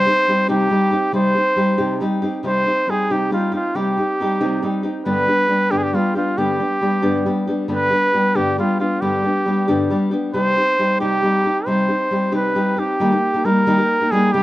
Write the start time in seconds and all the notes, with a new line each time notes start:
Already playing: C5
0.06 C4 D#4 G4
0.28 G3 C4 D#4 G4
0.48 C3 G3 C4 D#4 G4
0.70 G3 C4 D#4 G4
0.91 C4 D#4 G4
1.12 C3 G3 C4 D#4 G4 C5
1.35 C4 D#4 G4
1.56 G3 C4 D#4 G4
1.78 C3 G3 C4 D#4 G4
2.00 G3 C4 D#4 G4
2.22 C4 D#4 G4
2.43 C3 G3 C4 D#4 G4 C5
2.66 C4 D#4 G4
2.87 G3 C4 D#4 G4 G#4
3.10 C3 G3 C4 D#4 G4
3.31 G3 C4 D#4 F4 G4
3.52 C4 D#4 F4 G4
3.74 C3 G3 C4 D#4 G4
3.98 C4 D#4 G4
4.20 G3 C4 D#4 G4
4.41 C3 G3 C4 D#4 G4
4.62 G3 C4 D#4 G4
4.83 C4 D#4 G4
5.05 G2 D3 G3 B3 D4 G4 B4
5.27 G3 B3 D4 G4
5.48 G3 B3 D4 G4
5.71 G2 D3 G3 B3 D4 G4
5.77 G#4
5.83 G4
5.93 G3 B3 D4 F4 G4
6.15 G3 B3 D4 F4 G4
6.37 G2 D3 G3 B3 D4 G4
6.60 G3 B3 D4 G4
6.81 G3 B3 D4 G4
7.02 G2 D3 G3 B3 D4 G4
7.26 G3 B3 D4 G4
7.47 G3 B3 D4 G4
7.68 G2 D3 G3 B3 D4 G4
7.73 B4
7.90 G3 B3 D4 G4
8.13 G3 B3 D4 G4
8.35 G2 D3 G3 B3 D4 G4
8.58 G3 B3 D4 F4 G4
8.80 G3 B3 D4 F4 G4
9.01 G2 D3 G3 B3 D4 G4
9.24 G3 B3 D4 G4
9.46 G3 B3 D4 G4
9.68 G2 D3 G3 B3 D4 G4
9.90 G3 B3 D4 G4
10.11 G3 B3 D4 G4
10.33 C3 G3 C4 D#4 G4 C5
10.56 C4 D#4 G4
10.79 G3 C4 D#4 G4
11.00 C3 G3 C4 D#4 G4
11.22 G3 C4 D#4 G4
11.44 C4 D#4 G4
11.66 C3 G3 C4 D#4 G4 C5
11.89 C4 D#4 G4
12.11 G3 C4 D#4 G4
12.32 C3 G3 C4 D#4 G4 B4
12.55 G3 C4 D#4 G4
12.77 C4 D#4 G4
13.00 D#3 G3 A#3 D#4 G4
13.12 A#3 D#4 G4
13.34 A#3 D#4 G4
13.45 G3 A#3 D#4 G4 A#4
13.67 D#3 G3 A#3 D#4 G4
13.78 A#3 D#4 G4
14.01 A#3 D#4 G4
14.11 G3 A#3 D#4 G4 G#4
14.33 C3 G3 C4 D#4 G4